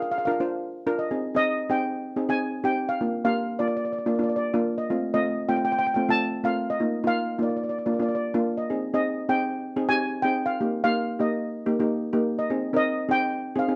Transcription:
0.02 0.10 F5 medium
0.12 0.17 F5 medium
0.18 0.24 F5 medium
0.25 0.35 D4 medium
0.25 0.35 F4 medium
0.25 0.35 A#4 medium
0.25 0.30 F5 medium
0.31 0.40 F5 soft
0.40 0.68 D4 medium
0.40 0.68 F4 medium
0.40 0.68 C5 medium
0.87 0.98 D4 medium
0.87 0.98 F4 medium
0.87 0.98 A#4 loud
0.99 1.35 D#5 medium
1.11 1.25 C4 medium
1.11 1.25 D#4 soft
1.11 1.25 G#4 medium
1.35 1.56 C4 medium
1.35 1.56 D#4 medium
1.35 1.56 G#4 medium
1.35 1.68 D#5 medium
1.70 1.98 C4 medium
1.70 1.98 D#4 medium
1.70 1.98 G#4 medium
1.70 2.26 G5 medium
2.16 2.24 C4 medium
2.16 2.24 D#4 medium
2.16 2.24 G#4 medium
2.29 2.50 C4 medium
2.29 2.50 D#4 medium
2.29 2.50 G#4 medium
2.29 2.65 G#5 medium
2.64 2.86 C4 medium
2.64 2.86 D#4 medium
2.64 2.86 G4 medium
2.64 2.89 G5 medium
2.89 3.24 F5 medium
3.01 3.14 A#3 medium
3.01 3.14 D4 medium
3.01 3.14 F4 medium
3.25 3.46 A#3 medium
3.25 3.46 D4 medium
3.25 3.46 G4 medium
3.25 3.60 F5 medium
3.59 3.88 A#3 medium
3.59 3.88 D4 medium
3.59 3.88 F4 medium
3.59 3.67 D5 medium
3.68 3.75 D5 soft
3.77 3.82 D5 medium
3.85 3.91 D5 soft
3.92 3.97 D5 soft
3.99 4.05 D5 soft
4.06 4.14 A#3 medium
4.06 4.14 D4 medium
4.06 4.14 F4 medium
4.06 4.13 D5 soft
4.15 4.21 D5 soft
4.19 4.40 A#3 medium
4.19 4.40 D4 medium
4.19 4.41 F4 medium
4.23 4.28 D5 medium
4.29 4.35 D5 soft
4.36 4.43 D5 medium
4.54 4.75 A#3 medium
4.54 4.75 D4 medium
4.54 4.76 F4 medium
4.78 5.13 D#5 medium
4.90 5.04 A3 medium
4.90 5.04 C4 medium
4.90 5.04 F4 medium
5.14 5.36 A3 medium
5.14 5.36 C4 medium
5.14 5.35 F4 medium
5.14 5.46 D#5 medium
5.49 5.78 A3 medium
5.49 5.78 C4 medium
5.49 5.78 F4 medium
5.49 5.56 G5 medium
5.57 5.64 G5 medium
5.65 5.71 G5 medium
5.72 5.77 G5 medium
5.79 5.86 G5 medium
5.87 5.93 G5 medium
5.94 6.04 A3 medium
5.94 6.04 C4 medium
5.94 6.04 F4 medium
5.94 6.02 G5 medium
6.09 6.30 A3 medium
6.09 6.30 C4 medium
6.09 6.30 F4 medium
6.09 6.46 A5 medium
6.44 6.65 A3 medium
6.44 6.65 C4 medium
6.44 6.66 F4 medium
6.44 6.69 F5 medium
6.70 7.07 D#5 medium
6.80 6.94 A#3 medium
6.80 6.94 D#4 medium
6.80 6.94 F4 medium
7.04 7.25 A#3 medium
7.04 7.25 D#4 medium
7.04 7.25 F4 medium
7.04 7.38 F5 medium
7.38 7.63 A#3 medium
7.38 7.63 D#4 medium
7.38 7.63 F4 medium
7.42 7.48 D5 medium
7.49 7.55 D5 soft
7.57 7.62 D5 soft
7.64 7.68 D5 soft
7.69 7.77 D5 soft
7.79 7.85 D5 soft
7.86 7.94 A#3 medium
7.86 7.94 D4 medium
7.86 7.94 F4 medium
7.86 7.92 D5 soft
7.94 8.01 D5 soft
7.99 8.21 A#3 medium
7.99 8.21 D4 medium
7.99 8.21 F4 medium
7.99 8.08 D5 soft
8.09 8.14 D5 soft
8.15 8.22 D5 medium
8.34 8.56 A#3 medium
8.34 8.56 D4 medium
8.34 8.56 F4 medium
8.57 8.93 D#5 medium
8.70 8.84 C4 medium
8.70 8.84 D#4 medium
8.70 8.84 G#4 medium
8.94 9.15 C4 medium
8.94 9.15 D#4 medium
8.94 9.15 G#4 medium
8.94 9.30 D#5 medium
9.29 9.58 C4 medium
9.29 9.58 D#4 medium
9.29 9.58 G#4 medium
9.29 9.86 G5 medium
9.76 9.84 C4 medium
9.76 9.84 D#4 medium
9.76 9.84 G#4 medium
9.89 10.11 C4 medium
9.89 10.11 D#4 medium
9.89 10.11 G4 medium
9.89 10.21 G#5 loud
10.22 10.46 C4 medium
10.22 10.46 D#4 medium
10.22 10.46 G#4 medium
10.22 10.34 G5 medium
10.46 10.83 F5 medium
10.61 10.74 A#3 medium
10.61 10.75 D#4 medium
10.61 10.74 G4 medium
10.84 11.06 A#3 medium
10.84 11.06 D#4 medium
10.84 11.06 G4 medium
10.84 11.17 F5 medium
11.19 11.48 A#3 medium
11.19 11.48 D#4 medium
11.19 11.48 G4 medium
11.19 12.11 D#5 medium
11.66 11.74 A#3 medium
11.66 11.74 D#4 medium
11.66 11.74 G4 medium
11.80 12.01 A#3 medium
11.80 12.01 D#4 medium
11.80 12.01 G4 medium
12.13 12.35 A#3 medium
12.13 12.36 D#4 medium
12.13 12.35 G4 medium
12.39 12.75 D#5 medium
12.50 12.64 C4 medium
12.50 12.64 D#4 medium
12.50 12.64 G#4 medium
12.73 12.95 C4 medium
12.73 12.96 D#4 medium
12.73 12.96 A#4 medium
12.73 13.08 D#5 medium
13.09 13.38 C4 medium
13.09 13.38 D#4 medium
13.09 13.38 G#4 medium
13.09 13.59 G5 medium
13.56 13.64 C4 medium
13.56 13.64 D#4 medium
13.56 13.64 G#4 medium
13.56 13.76 F5 medium
13.68 13.76 C4 medium
13.68 13.76 D#4 medium
13.68 13.76 G#4 medium

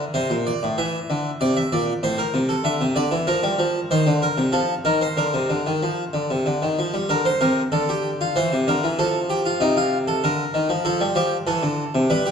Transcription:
0.00 0.13 A#4 medium
0.14 0.30 C3 medium
0.14 0.34 C5 medium
0.30 0.50 A#2 medium
0.47 0.66 D5 medium
0.63 0.78 A2 medium
0.78 0.97 E3 medium
0.78 1.39 E5 medium
1.10 1.29 D3 medium
1.41 1.60 C3 medium
1.41 1.56 D5 medium
1.57 1.72 E5 medium
1.72 1.92 A#2 medium
1.72 1.92 D5 medium
2.03 2.22 A2 medium
2.03 2.18 C5 medium
2.18 2.38 A#4 medium
2.34 2.53 C3 medium
2.49 2.64 A4 medium
2.64 2.80 D3 medium
2.64 2.84 E5 medium
2.81 2.96 C3 medium
2.96 3.11 D3 medium
2.96 3.16 D5 medium
3.11 3.27 E3 medium
3.27 3.43 F3 medium
3.27 3.88 A#4 medium
3.43 3.59 G3 medium
3.59 3.78 F3 medium
3.91 4.06 D#3 medium
3.91 4.10 C5 medium
4.07 4.26 D3 medium
4.22 4.42 A#4 medium
4.38 4.53 C3 medium
4.52 4.72 F3 medium
4.52 4.73 A4 medium
4.85 5.05 D#3 medium
4.85 5.01 A#4 medium
5.01 5.17 C5 medium
5.17 5.33 D3 medium
5.17 6.74 A#4 medium
5.34 5.49 C3 medium
5.50 5.65 D3 medium
5.66 5.82 D#3 medium
5.83 6.02 F3 medium
6.13 6.29 D3 medium
6.31 6.46 C3 soft
6.46 6.62 D3 medium
6.62 6.78 D#3 soft
6.79 6.94 F3 soft
6.94 7.09 G3 soft
7.09 7.29 D3 medium
7.09 7.25 A#4 medium
7.25 7.41 C5 medium
7.41 7.61 C3 medium
7.41 7.61 A#4 medium
7.72 8.34 D3 medium
7.72 7.88 A4 medium
7.89 8.09 G4 medium
8.21 8.36 F4 medium
8.36 8.51 E3 medium
8.36 8.55 C5 medium
8.53 8.68 C3 medium
8.67 8.83 D3 medium
8.67 8.87 A#4 medium
8.84 8.99 E3 medium
8.99 9.59 F3 medium
8.99 9.18 A4 medium
9.30 9.45 G4 medium
9.46 9.61 F4 medium
9.60 10.21 C3 medium
9.60 9.76 D#4 medium
9.77 9.96 F4 medium
10.08 10.23 A4 medium
10.24 10.43 D3 medium
10.24 10.84 A#4 medium
10.54 10.69 D#3 medium
10.69 10.84 F3 medium
10.85 11.00 F3 medium
10.85 11.04 A4 medium
11.01 11.16 G3 medium
11.15 11.35 F3 medium
11.15 11.36 G4 medium
11.47 11.63 E3 medium
11.47 12.08 A4 medium
11.63 11.82 D3 medium
11.95 12.10 C3 medium
12.10 12.30 G3 medium
12.10 12.25 B4 medium
12.26 12.31 G4 medium

